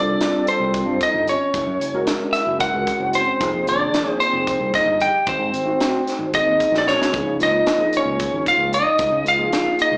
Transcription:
Already playing: fingered electric bass C2, tine electric piano G3 C4 F4 A4, trombone D4, lead electric guitar D5
0.21 snare, closed hi-hat
0.33 tine electric piano G3 C4 F4 A4
0.47 lead electric guitar C5, closed hi-hat
0.51 trombone C4
0.60 fingered electric bass C2
0.74 kick, closed hi-hat
0.86 fingered electric bass G2
1.01 lead electric guitar D#5, kick, closed hi-hat
1.06 trombone D#4
1.14 fingered electric bass G1
1.27 lead electric guitar C#5, closed hi-hat
1.32 trombone C#4
1.54 fingered electric bass F#1, kick, closed hi-hat
1.67 fingered electric bass F#2
1.80 fingered electric bass F#1, closed hi-hat
1.94 tine electric piano G#3 C#4 F#4 A#4
2.07 snare, closed hi-hat
2.33 lead electric guitar E5, snare, closed hi-hat
2.37 trombone E4
2.47 fingered electric bass F#1
2.58 tine electric piano G#3 C#4 F#4 A#4, lead electric guitar F#5, kick, closed hi-hat
2.65 trombone F#4
2.74 fingered electric bass C#2
2.87 kick, closed hi-hat
2.99 fingered electric bass F#1, tine electric piano G#3 C#4 F#4 C5
3.13 lead electric guitar C5, closed hi-hat
3.19 trombone C4
3.40 fingered electric bass F1, tine electric piano F3 A#3 D#4 G#4, kick, closed hi-hat
3.53 fingered electric bass F2
3.66 fingered electric bass F1, tine electric piano D#3 F3 A#3 G#4, lead electric guitar D5, closed hi-hat
3.70 trombone D4
3.94 snare, closed hi-hat
4.06 tine electric piano F3 A#3 D#4 G#4
4.20 lead electric guitar C5, closed hi-hat
4.24 trombone C4
4.33 fingered electric bass F1
4.47 kick, closed hi-hat
4.59 fingered electric bass C2
4.74 lead electric guitar D#5, kick, snare, closed hi-hat
4.78 trombone D#4
4.86 fingered electric bass G1
5.00 lead electric guitar G5, closed hi-hat
5.06 trombone G4
5.27 fingered electric bass G#1, lead electric guitar C5, kick, closed hi-hat
5.32 trombone C4
5.39 fingered electric bass G#2
5.52 fingered electric bass G#1, closed hi-hat
5.65 tine electric piano A3 C4 D#4 F#4
5.80 snare, closed hi-hat
6.07 snare, closed hi-hat
6.19 fingered electric bass G#1
6.33 tine electric piano A3 C4 D#4 G#4, lead electric guitar D#5, kick, closed hi-hat
6.37 trombone D#4
6.47 fingered electric bass D#2
6.60 kick, closed hi-hat
6.71 fingered electric bass A#1, tine electric piano A3 C4 D#4 F#4, snare
6.78 lead electric guitar D5
6.83 trombone D4
6.87 lead electric guitar C#5, snare
6.92 trombone C#4
7.02 snare
7.11 fingered electric bass C#2, tine electric piano F3 A#3 D#4 G#4, kick, closed hi-hat
7.26 fingered electric bass C#3
7.38 fingered electric bass C#2, tine electric piano F3 A#3 D#4 F4, snare, closed hi-hat
7.43 trombone D#4, lead electric guitar D#5
7.66 snare, closed hi-hat
7.78 tine electric piano F3 A#3 D#4 G#4
7.93 closed hi-hat
7.97 trombone C#4, lead electric guitar C#5
8.05 fingered electric bass C#2
8.20 kick, closed hi-hat
8.32 fingered electric bass G#1
8.46 trombone F4, lead electric guitar F5, kick, closed hi-hat
8.58 fingered electric bass C#2
8.73 trombone D#4, lead electric guitar D#5, closed hi-hat
8.99 fingered electric bass C#2, kick, closed hi-hat
9.12 fingered electric bass C#3
9.24 fingered electric bass C#2, lead electric guitar F5, closed hi-hat
9.30 trombone F4
9.38 tine electric piano F3 A#3 D#4 G#4
9.53 snare, closed hi-hat
9.79 trombone D#4, lead electric guitar D#5, closed hi-hat
9.92 fingered electric bass C#2

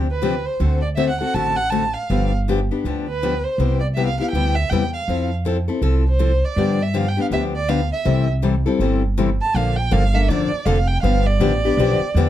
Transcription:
Already playing: upright bass D2
0.11 violin B4
0.22 steel-string acoustic guitar C3 F3 C4 D4 G4
0.46 violin C5
0.60 upright bass D2, steel-string acoustic guitar D3 A3 C4 F#4 A4
0.82 violin D5
0.96 steel-string acoustic guitar D3 A3 C4 F#4 A4, violin E5
1.09 violin F#5
1.21 steel-string acoustic guitar C4 F#4 A4, violin F#5
1.34 upright bass A1, steel-string acoustic guitar D3 A3 C4 F#4 A4, violin A5
1.57 violin F#5
1.70 steel-string acoustic guitar D3 A3 C4 F#4 A4, violin A5
1.94 violin F5
2.10 upright bass G1, steel-string acoustic guitar D3 F3 B3 D4 G4
2.48 steel-string acoustic guitar D3 F3 B3 D4 G4
2.71 steel-string acoustic guitar B3 D4 G4
2.84 upright bass D2, steel-string acoustic guitar D3 F3 B3 D4 G4
3.09 violin B4
3.22 steel-string acoustic guitar D3 F3 B3 D4 G4
3.44 violin C5
3.58 upright bass C2, steel-string acoustic guitar C3 G3 B3 E4 G4
3.80 violin D5
3.95 steel-string acoustic guitar C3 G3 B3 E4 G4, violin E5
4.06 violin F5
4.20 steel-string acoustic guitar B3 E4 G4, violin F5
4.31 upright bass D2, steel-string acoustic guitar C3 G3 B3, violin G5
4.36 steel-string acoustic guitar E4 G4
4.55 violin E5
4.70 upright bass E2, steel-string acoustic guitar C3 G3 B3 E4 G4, violin G5
4.94 violin F5
5.08 upright bass F2, steel-string acoustic guitar F3 C4 E4 A4
5.45 steel-string acoustic guitar F3 C4 E4 A4
5.68 steel-string acoustic guitar C4 E4 A4
5.82 upright bass C2, steel-string acoustic guitar F3 C4 E4 A4
6.09 violin C5
6.19 steel-string acoustic guitar F3 C4 E4 A4
6.45 violin D5
6.56 upright bass G2, steel-string acoustic guitar D3 F3 B3 D4 G4
6.83 violin E5
6.94 steel-string acoustic guitar D3 F3 B3 D4 G4, violin F5
7.08 violin G5
7.17 steel-string acoustic guitar B3 D4 G4
7.21 violin F5
7.30 upright bass D2, steel-string acoustic guitar D3 F3 B3 D4 G4, violin E5
7.56 violin D5
7.68 steel-string acoustic guitar D3 F3 B3 D4 G4, violin F5
7.92 violin E5
8.05 upright bass C2, steel-string acoustic guitar C3 E3 G3 C4 E4 A4
8.42 steel-string acoustic guitar C3 E3 G3 C4 E4 A4
8.66 steel-string acoustic guitar G3 C4 E4 A4
8.79 upright bass G1, steel-string acoustic guitar C3 E3 G3 C4 E4 A4
9.18 steel-string acoustic guitar C3 E3 G3 C4 E4 A4
9.41 violin A5
9.54 upright bass A#1, steel-string acoustic guitar D3 F3 A#3 D4 A4, violin F5
9.76 violin G5
9.91 upright bass G1, steel-string acoustic guitar D3 F3 A#3 D4 A4, violin F5
10.14 steel-string acoustic guitar A#3 D4 A4, violin E5
10.28 upright bass A1, steel-string acoustic guitar D3 F3 A#3 D4 A4, violin D5
10.52 muted upright bass stroke
10.65 upright bass F1, steel-string acoustic guitar D3 F3 A#3 D4 A4, violin F5
10.87 violin G5
11.03 upright bass G1, steel-string acoustic guitar D3 F3 B3 D4 G4, violin F5
11.26 violin D5
11.40 upright bass A1, steel-string acoustic guitar D3 F3 B3 D4 G4
11.65 steel-string acoustic guitar B3 D4 G4
11.77 upright bass B1, steel-string acoustic guitar D3 F3 B3 D4 G4
12.01 muted upright bass stroke
12.15 upright bass E2, steel-string acoustic guitar D3 F3 B3 D4 G4

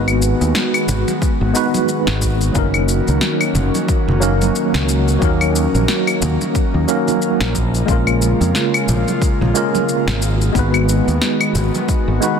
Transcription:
Already playing: fretless electric bass G#1, analog synth pad D#3 G#3 B3 F#4, tine electric piano G#3 B3 D#4 F#4 B4
0.08 claves, shaker
0.22 shaker
0.41 fretless electric bass D#2, shaker
0.55 snare, shaker
0.74 claves, shaker
0.88 fretless electric bass G#1, low conga, shaker
1.08 high conga, shaker
1.22 kick, shaker
1.41 fretless electric bass G#1
1.53 tine electric piano G#3 B3 D#4 F#4 B4, shaker
1.74 high conga, shaker
1.89 shaker
2.07 fretless electric bass G#1, snare
2.22 kick, shaker
2.41 shaker
2.52 fretless electric bass F#1, tine electric piano F#3 A#3 C#4, analog synth pad A#3 C#4, kick, shaker
2.57 tine electric piano D#4 A#4
2.74 claves, shaker
2.89 shaker
3.08 fretless electric bass C#2, shaker
3.21 snare, shaker
3.41 claves, shaker
3.55 fretless electric bass F#1, low conga, shaker
3.75 high conga, shaker
3.88 kick, shaker
4.08 fretless electric bass F#1, low conga
4.20 tine electric piano F#3 A#3 C#4 D#4 A#4, shaker
4.41 high conga, shaker
4.56 shaker
4.74 fretless electric bass C#2, snare, low conga, shaker
4.89 shaker
5.08 shaker
5.19 fretless electric bass D#2, tine electric piano F#3 A#3 C#4, kick, shaker
5.23 tine electric piano D#4 A#4
5.41 claves, shaker
5.56 shaker
5.74 fretless electric bass A#1, shaker
5.88 snare, shaker
6.07 claves, shaker
6.22 fretless electric bass D#2, low conga, shaker
6.41 high conga, shaker
6.55 kick, shaker
6.74 fretless electric bass D#2
6.87 tine electric piano F#3 A#3 C#4 D#4 A#4, shaker
7.08 high conga, shaker
7.22 shaker
7.41 fretless electric bass A#1, snare
7.55 analog synth pad C#3 G#3 F4, kick, shaker
7.75 shaker
7.86 fretless electric bass A#1, tine electric piano G#3 A#3 C#4, kick, shaker
7.90 tine electric piano F4 A#4
8.07 claves, shaker
8.22 shaker
8.41 fretless electric bass F2, shaker
8.55 snare, shaker
8.74 claves, shaker
8.89 fretless electric bass A#1, low conga, shaker
9.08 high conga, shaker
9.22 kick, shaker
9.41 fretless electric bass A#1, low conga
9.54 tine electric piano G#3 A#3 C#4 F4 A#4, shaker
9.75 high conga, shaker
9.89 shaker
10.07 fretless electric bass G#1, snare, low conga, shaker
10.21 analog synth pad D#3 B3 F#4, shaker
10.41 shaker
10.53 fretless electric bass G#1, tine electric piano G#3 B3 D#4, kick, shaker
10.57 tine electric piano F#4 B4
10.74 claves, shaker
10.89 shaker
11.08 fretless electric bass D#2, shaker
11.22 snare, shaker
11.41 claves, shaker
11.55 fretless electric bass G#1, low conga, shaker
11.75 high conga, shaker
11.89 kick, shaker
12.08 fretless electric bass G#1
12.21 tine electric piano G#3 B3 D#4 F#4 B4, shaker

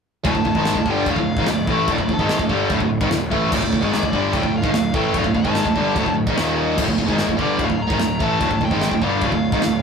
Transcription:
0.25 picked electric bass D1, distorted electric guitar D2 A2, lead electric guitar A5, kick, china
0.35 picked electric bass D1, distorted electric guitar D2 A2, kick
0.45 picked electric bass D1, distorted electric guitar D2 A2, kick
0.55 picked electric bass G#1, distorted electric guitar G#2 D#3 G#3, kick
0.65 snare, china
0.75 picked electric bass D1, distorted electric guitar D2 A2, kick
0.86 picked electric bass G1, distorted electric guitar G2 D3 G3, kick
0.90 lead electric guitar G5
1.06 picked electric bass D1, distorted electric guitar D2 A2, kick, china
1.11 lead electric guitar F5
1.16 picked electric bass D1, distorted electric guitar D2 A2, kick
1.37 picked electric bass G#1, distorted electric guitar G#2 D#3, kick
1.46 picked electric bass D1, distorted electric guitar D2 A2, snare, china
1.51 lead electric guitar D5
1.67 picked electric bass A1, distorted electric guitar A2 E3 A3, kick
1.88 picked electric bass D1, distorted electric guitar D2 A2, kick, china
1.92 lead electric guitar D5
1.98 picked electric bass D1, distorted electric guitar D2 A2, kick
2.09 picked electric bass D1, distorted electric guitar D2 A2, kick
2.13 lead electric guitar A4
2.19 picked electric bass G#1, distorted electric guitar G#2 D#3 G#3, kick
2.29 snare, china
2.39 picked electric bass D1, distorted electric guitar D2 A2, kick
2.49 picked electric bass G1, distorted electric guitar G2 D3 G3, kick
2.69 picked electric bass D1, distorted electric guitar D2 A2, kick, china
2.80 picked electric bass D1, distorted electric guitar D2 A2, kick
3.01 picked electric bass G#1, distorted electric guitar G#2 D#3, kick
3.10 picked electric bass D1, distorted electric guitar D2 A2, snare, china
3.30 picked electric bass A1, distorted electric guitar A2 E3 A3, kick
3.51 picked electric bass D1, distorted electric guitar D2 A2, lead electric guitar D5, kick, crash, china
3.62 picked electric bass D1, distorted electric guitar D2 A2, kick
3.72 picked electric bass D1, distorted electric guitar D2 A2, kick
3.81 picked electric bass G#1, distorted electric guitar G#2 D#3 G#3, kick
3.93 lead electric guitar D5, snare, china
4.03 picked electric bass D1, distorted electric guitar D2 A2, kick
4.13 picked electric bass G1, distorted electric guitar G2 D3 G3, kick
4.33 picked electric bass D1, distorted electric guitar D2 A2, lead electric guitar G5, kick, china
4.43 picked electric bass D1, distorted electric guitar D2 A2, kick
4.57 lead electric guitar F5
4.63 picked electric bass G#1, distorted electric guitar G#2 D#3, kick
4.73 picked electric bass D1, distorted electric guitar D2 A2, snare, china
4.94 picked electric bass A1, distorted electric guitar A2 E3 A3, lead electric guitar G5, kick
5.14 picked electric bass D1, distorted electric guitar D2 A2, lead electric guitar F5, kick, china
5.24 picked electric bass D1, distorted electric guitar D2 A2, kick
5.34 picked electric bass D1, distorted electric guitar D2 A2, lead electric guitar A5, kick
5.45 picked electric bass G#1, distorted electric guitar G#2 D#3 G#3, kick
5.55 snare, china
5.65 picked electric bass D1, distorted electric guitar D2 A2, kick
5.76 picked electric bass G1, distorted electric guitar G2 D3 G3, kick
5.96 picked electric bass D1, distorted electric guitar D2 A2, kick, china
6.06 picked electric bass D1, distorted electric guitar D2 A2, kick
6.27 picked electric bass G#1, distorted electric guitar G#2 D#3, kick
6.37 picked electric bass D#1, distorted electric guitar D#2 A#2 D#3, snare, china
6.78 picked electric bass D1, distorted electric guitar D2 A2, kick, china, crash
6.88 picked electric bass D1, distorted electric guitar D2 A2, kick
6.98 picked electric bass D1, distorted electric guitar D2 A2, kick
7.09 picked electric bass G#1, distorted electric guitar G#2 D#3 G#3, kick
7.18 snare, china
7.29 picked electric bass D1, distorted electric guitar D2 A2, kick
7.38 picked electric bass G1, distorted electric guitar G2 D3 G3, kick
7.43 lead electric guitar D5
7.59 picked electric bass D1, distorted electric guitar D2 A2, kick, china
7.64 lead electric guitar F5
7.69 picked electric bass D1, distorted electric guitar D2 A2, kick
7.82 lead electric guitar A#5
7.90 picked electric bass G#1, distorted electric guitar G#2 D#3, kick
7.99 picked electric bass D1, distorted electric guitar D2 A2, snare, china
8.20 picked electric bass A1, distorted electric guitar A2 E3 A3, lead electric guitar A5, kick
8.40 picked electric bass D1, distorted electric guitar D2 A2, kick, china
8.51 picked electric bass D1, distorted electric guitar D2 A2, kick
8.61 picked electric bass D1, distorted electric guitar D2 A2, lead electric guitar G5, kick
8.70 picked electric bass G#1, distorted electric guitar G#2 D#3 G#3, kick
8.81 snare, china
8.91 picked electric bass D1, distorted electric guitar D2 A2, kick
9.02 picked electric bass G1, distorted electric guitar G2 D3 G3, lead electric guitar F5, kick
9.21 picked electric bass D1, distorted electric guitar D2 A2, kick, china
9.31 picked electric bass D1, distorted electric guitar D2 A2, kick
9.52 picked electric bass G#1, distorted electric guitar G#2 D#3, kick
9.62 picked electric bass D1, distorted electric guitar D2 A2, snare, china

